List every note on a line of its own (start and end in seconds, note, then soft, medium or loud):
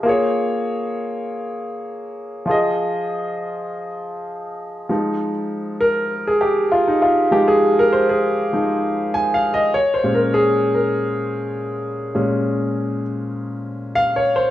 0.03 2.43 A#3 medium
0.03 2.44 F4 medium
0.03 2.44 G#4 medium
0.09 2.46 C#5 medium
2.46 4.85 F3 medium
2.46 4.86 F4 medium
2.46 4.87 G#4 medium
2.51 4.88 D#5 medium
4.89 5.31 F3 medium
4.89 5.31 G#3 soft
4.89 5.31 D#4 medium
5.81 6.29 A#4 medium
6.27 6.42 G#4 medium
6.41 6.72 G4 medium
6.72 6.88 F4 medium
6.88 7.02 D#4 medium
7.02 7.33 F4 medium
7.31 8.51 F3 medium
7.31 8.52 G#3 medium
7.31 8.52 D#4 medium
7.31 7.49 G4 medium
7.48 7.79 G#4 medium
7.79 7.93 A#4 medium
7.93 8.09 C5 medium
8.09 8.65 G#4 medium
8.53 8.80 F3 soft
8.53 8.80 G#3 soft
8.53 8.80 D#4 medium
9.14 9.34 G#5 medium
9.34 9.54 F5 medium
9.54 9.59 D#5 medium
9.74 9.93 C#5 medium
9.94 10.15 C5 medium
10.03 12.13 A#2 medium
10.03 12.13 G#3 soft
10.03 12.14 C#4 medium
10.15 10.20 A#4 medium
10.34 10.75 G#4 medium
10.75 11.02 A#4 medium
12.15 13.01 A#2 medium
12.15 13.01 G#3 soft
12.15 13.02 C#4 medium
13.95 14.16 F5 loud
14.16 14.37 C#5 medium
14.36 14.51 C5 medium